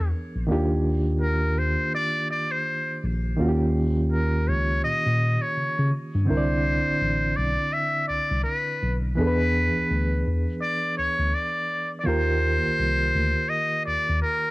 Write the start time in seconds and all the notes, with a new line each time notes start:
Already playing: E3 B3 D4 G#4 A#4
0.00 E2
0.36 A#1
0.47 D#3 A#3 D4
0.51 D#2 F4 G4
1.22 A#4
1.59 C5
1.95 D5
2.31 D5
2.51 C5
3.04 A#1
3.37 D#2 D#3 A#3 C#4 F4
3.42 F#4
3.48 G4
4.12 A#4
4.48 C#2 C#5
4.84 A#2 D#5
5.06 A#2
5.42 C#5
5.57 C#3
5.78 C#3
6.15 G2
6.25 D3 C4 D4 C5
6.29 C2 E4 A#4
6.37 D5
7.02 A1
7.36 B1 D5
7.73 E5
8.08 C2 D5
8.32 C2
8.44 B4
8.82 B1
9.15 E2 E3 B3 D4 G#4 B4
9.20 A4
9.27 B4
9.76 D2
9.91 D2
10.27 E2
10.62 D5
10.98 D2 C#5
11.19 D2
11.35 D5
12.00 D#3 D5
12.05 D#2 A#3 F4 G4 C5
12.09 A#4
12.64 C2
12.79 C2
13.16 D2
13.50 D#5
13.86 D#2 D5
14.09 D#2
14.22 A#4